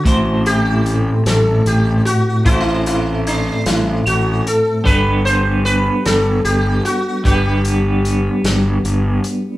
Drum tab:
HH |xxxxxx|xxxxxx|xxxxxx|xxxxxx|
SD |---o--|---o--|---o--|---o--|
BD |o-----|o-----|o-----|o-----|